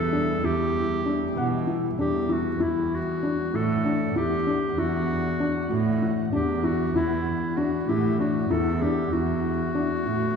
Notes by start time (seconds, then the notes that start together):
Already playing: E2 E3 G3 E4 A4
0.13 D4
0.42 E2 E4 G4
1.06 D4
1.36 B2 F#5
1.67 E4
1.98 E2 D4 G4
2.29 E4 F#4
2.60 E2 D4 E4 F#5
2.95 F#4
3.23 D4
3.54 A2 E4 A4
3.85 D4
4.16 E2 E4 G4
4.47 D4
4.77 E2 E4 F#4
5.40 D4
5.70 A2 F#4
6.02 E4
6.32 E2 D4 G4
6.64 E4 F#4
6.95 E2 E4
7.57 D4 F#4
7.88 A2 E4 G4
8.20 D4 F#4
8.50 E2 E4 A4
8.82 D4 G4
9.13 E2 E4 F#4
9.75 D4
10.06 A2 F#4